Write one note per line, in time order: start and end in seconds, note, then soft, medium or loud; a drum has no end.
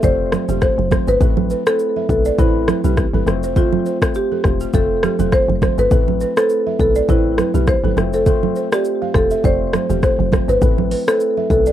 0.03 0.37 F1 loud
0.03 0.45 A3 medium
0.03 0.45 C4 medium
0.03 0.45 F4 medium
0.03 0.45 C5 loud
0.03 0.62 C5 loud
0.03 0.12 D5 medium
0.03 kick loud
0.03 low conga medium
0.03 shaker medium
0.32 0.41 C5 medium
0.32 cross-stick loud
0.32 high conga medium
0.32 shaker medium
0.48 0.70 E1 medium
0.48 0.88 A3 medium
0.48 0.88 C4 medium
0.48 0.88 F4 medium
0.48 0.56 G4 medium
0.48 0.88 C5 medium
0.48 high conga medium
0.48 shaker medium
0.61 0.71 A4 medium
0.61 1.09 C5 loud
0.61 kick medium
0.61 cross-stick medium
0.61 shaker medium
0.78 1.00 F1 loud
0.78 high conga medium
0.91 1.18 A3 medium
0.91 1.19 C4 medium
0.91 1.19 F4 medium
0.91 1.19 C5 medium
0.91 1.00 C5 medium
0.91 kick medium
0.91 cross-stick medium
0.91 high conga medium
0.91 shaker medium
1.08 1.17 G1 loud
1.08 1.68 B4 medium
1.08 1.15 C5 medium
1.08 shaker medium
1.21 1.54 A1 loud
1.21 1.62 A3 medium
1.21 1.62 C4 medium
1.21 1.63 E4 medium
1.21 1.29 A4 medium
1.21 1.63 B4 loud
1.21 kick loud
1.21 low conga medium
1.21 shaker medium
1.37 high conga loud
1.50 1.59 B4 medium
1.50 shaker medium
1.66 2.06 A3 medium
1.66 2.06 C4 medium
1.66 2.06 E4 medium
1.66 2.09 A4 medium
1.66 2.06 B4 medium
1.66 1.74 C5 medium
1.66 cross-stick loud
1.66 shaker medium
1.79 shaker medium
1.96 2.03 E5 medium
1.96 high conga soft
2.09 2.31 B1 loud
2.09 2.36 A3 medium
2.09 2.36 C4 medium
2.09 2.36 E4 medium
2.09 2.40 A4 medium
2.09 2.37 B4 medium
2.09 kick loud
2.09 shaker soft
2.25 2.32 D5 medium
2.25 shaker medium
2.38 2.72 A1 loud
2.38 2.80 A3 medium
2.38 2.80 C4 medium
2.38 2.80 E4 medium
2.38 3.23 E4 medium
2.38 2.80 B4 loud
2.38 2.47 C5 medium
2.38 kick loud
2.38 low conga medium
2.38 shaker medium
2.68 2.77 B4 medium
2.68 cross-stick loud
2.68 high conga medium
2.68 shaker soft
2.84 3.06 B1 medium
2.84 3.05 A3 medium
2.84 3.05 C4 medium
2.84 3.05 E4 medium
2.84 2.91 G4 medium
2.84 3.05 B4 medium
2.84 high conga medium
2.84 shaker medium
2.97 kick medium
2.97 cross-stick medium
2.97 shaker medium
3.13 3.23 G1 medium
3.13 3.25 A3 medium
3.13 3.26 C4 medium
3.13 3.35 E4 medium
3.13 3.21 A4 medium
3.13 3.35 B4 medium
3.13 high conga medium
3.27 3.82 F1 medium
3.27 3.54 A3 medium
3.27 3.54 C4 medium
3.27 3.54 F4 medium
3.27 3.54 C5 loud
3.27 cross-stick medium
3.27 high conga medium
3.27 shaker medium
3.43 3.50 C5 medium
3.43 shaker medium
3.56 3.98 A3 medium
3.56 3.98 C4 medium
3.56 3.98 F4 medium
3.56 4.17 F4 medium
3.56 3.65 A4 medium
3.56 3.98 C5 loud
3.56 kick loud
3.56 low conga medium
3.56 shaker medium
3.73 high conga loud
3.86 3.94 C5 medium
3.86 shaker medium
4.02 4.41 A3 medium
4.02 4.41 C4 medium
4.02 4.41 F4 medium
4.02 4.09 A4 medium
4.02 4.41 C5 medium
4.02 kick loud
4.02 cross-stick loud
4.02 shaker medium
4.15 4.76 G4 loud
4.15 shaker medium
4.32 4.38 A4 medium
4.32 high conga soft
4.44 4.66 E1 loud
4.44 4.71 A3 medium
4.44 4.72 C4 medium
4.44 4.72 F4 medium
4.44 4.72 C5 medium
4.44 kick loud
4.44 cross-stick medium
4.44 shaker soft
4.60 4.68 G4 medium
4.60 shaker medium
4.74 5.07 F1 loud
4.74 5.15 A3 medium
4.74 5.15 C4 medium
4.74 5.15 F4 medium
4.74 4.82 A4 medium
4.74 5.35 A4 loud
4.74 5.16 C5 loud
4.74 kick loud
4.74 low conga medium
4.74 shaker medium
5.03 5.12 G4 medium
5.03 cross-stick loud
5.03 high conga medium
5.03 shaker soft
5.19 5.41 E1 medium
5.19 5.59 A3 medium
5.19 5.59 C4 medium
5.19 5.59 F4 medium
5.19 5.26 A4 medium
5.19 5.59 C5 medium
5.19 high conga medium
5.19 shaker medium
5.32 5.41 C5 medium
5.32 5.80 C5 loud
5.32 kick medium
5.32 cross-stick medium
5.32 shaker medium
5.49 5.70 F1 loud
5.49 high conga medium
5.62 5.89 A3 medium
5.62 5.89 C4 medium
5.62 5.89 F4 medium
5.62 5.89 C5 medium
5.62 5.71 C5 medium
5.62 kick medium
5.62 cross-stick medium
5.62 high conga medium
5.62 shaker medium
5.78 5.88 G1 medium
5.78 5.85 A4 medium
5.78 6.39 B4 loud
5.78 shaker medium
5.91 6.25 A1 loud
5.91 6.33 A3 medium
5.91 6.33 C4 medium
5.91 6.33 E4 medium
5.91 6.00 A4 medium
5.91 6.33 B4 loud
5.91 kick loud
5.91 low conga medium
5.91 shaker medium
6.08 high conga loud
6.21 6.29 B4 medium
6.21 shaker medium
6.36 6.76 A3 medium
6.36 6.76 C4 medium
6.36 6.76 E4 medium
6.36 6.79 A4 loud
6.36 6.76 B4 medium
6.36 6.44 C5 medium
6.36 cross-stick loud
6.36 shaker medium
6.49 shaker medium
6.67 6.73 E5 medium
6.67 high conga soft
6.79 7.01 B1 loud
6.79 7.07 A3 medium
6.79 7.07 C4 medium
6.79 7.07 E4 medium
6.79 7.10 A4 loud
6.79 7.07 B4 medium
6.79 kick loud
6.79 shaker soft
6.95 7.09 D5 medium
6.95 shaker medium
7.08 7.42 A1 loud
7.08 7.50 A3 medium
7.08 7.50 C4 medium
7.08 7.51 E4 medium
7.08 7.70 E4 medium
7.08 7.51 B4 loud
7.08 7.17 C5 medium
7.08 kick loud
7.08 low conga medium
7.08 shaker medium
7.38 7.47 B4 medium
7.38 cross-stick loud
7.38 high conga medium
7.38 shaker medium
7.54 7.76 B1 medium
7.54 7.76 A3 medium
7.54 7.76 C4 medium
7.54 7.76 E4 medium
7.54 7.61 G4 medium
7.54 7.76 B4 medium
7.54 high conga medium
7.54 shaker medium
7.67 8.15 C5 loud
7.67 kick medium
7.67 cross-stick medium
7.67 shaker medium
7.83 7.93 G1 medium
7.83 7.96 A3 medium
7.83 7.96 C4 medium
7.83 8.05 E4 medium
7.83 7.91 A4 medium
7.83 8.05 B4 medium
7.83 high conga medium
7.97 8.52 F1 loud
7.97 8.24 A3 medium
7.97 8.24 C4 medium
7.97 8.24 F4 medium
7.97 8.24 C5 loud
7.97 cross-stick medium
7.97 high conga medium
7.97 shaker medium
8.13 8.74 A4 medium
8.13 8.20 C5 medium
8.13 shaker medium
8.26 8.68 A3 medium
8.26 8.68 C4 medium
8.26 8.68 F4 medium
8.26 8.35 A4 medium
8.26 8.68 C5 loud
8.26 kick loud
8.26 low conga medium
8.26 shaker medium
8.43 high conga loud
8.56 8.65 C5 medium
8.56 shaker medium
8.72 9.11 A3 medium
8.72 9.11 C4 medium
8.72 9.12 F4 medium
8.72 9.16 G4 loud
8.72 9.12 C5 medium
8.72 8.79 D5 medium
8.72 cross-stick loud
8.72 shaker medium
8.85 shaker medium
9.02 9.08 F5 medium
9.02 high conga soft
9.14 9.36 E1 medium
9.14 9.42 A3 medium
9.14 9.42 C4 medium
9.14 9.42 F4 medium
9.14 9.45 A4 medium
9.14 9.42 C5 medium
9.14 kick loud
9.14 cross-stick medium
9.14 shaker soft
9.31 9.44 E5 medium
9.31 shaker medium
9.44 9.78 F1 loud
9.44 9.86 A3 medium
9.44 9.86 C4 medium
9.44 9.86 F4 medium
9.44 9.86 C5 loud
9.44 10.03 C5 loud
9.44 9.53 D5 medium
9.44 kick loud
9.44 low conga medium
9.44 shaker medium
9.73 9.82 C5 medium
9.73 cross-stick loud
9.73 high conga medium
9.73 shaker medium
9.89 10.11 E1 medium
9.89 10.29 A3 medium
9.89 10.29 C4 medium
9.89 10.29 F4 medium
9.89 9.97 G4 medium
9.89 10.29 C5 medium
9.89 high conga medium
9.89 shaker medium
10.03 10.12 A4 medium
10.03 10.46 C5 loud
10.03 kick medium
10.03 cross-stick medium
10.03 shaker medium
10.19 10.41 F1 loud
10.19 high conga medium
10.32 10.59 A3 medium
10.32 10.60 C4 medium
10.32 10.60 F4 medium
10.32 10.60 C5 medium
10.32 10.41 C5 medium
10.32 kick medium
10.32 cross-stick medium
10.32 high conga medium
10.32 shaker medium
10.48 10.58 G1 medium
10.48 11.10 B4 loud
10.48 10.56 C5 medium
10.48 shaker medium
10.61 10.95 A1 loud
10.61 11.03 A3 medium
10.61 11.03 C4 medium
10.61 11.03 E4 medium
10.61 10.70 A4 medium
10.61 11.04 B4 loud
10.61 kick loud
10.61 low conga medium
10.61 shaker medium
10.78 high conga loud
10.91 11.08 B4 medium
10.91 open hi-hat medium
10.91 shaker medium
11.07 11.47 A3 medium
11.07 11.47 C4 medium
11.07 11.47 E4 medium
11.07 11.50 A4 loud
11.07 11.47 B4 medium
11.07 11.15 C5 medium
11.07 cross-stick loud
11.07 shaker medium
11.20 shaker medium
11.37 11.44 E5 medium
11.37 high conga soft
11.50 11.72 B1 loud
11.50 11.72 A3 medium
11.50 11.72 C4 medium
11.50 11.72 E4 medium
11.50 11.72 A4 medium
11.50 11.72 B4 medium
11.50 kick loud
11.50 shaker soft
11.66 11.72 D5 medium
11.66 shaker medium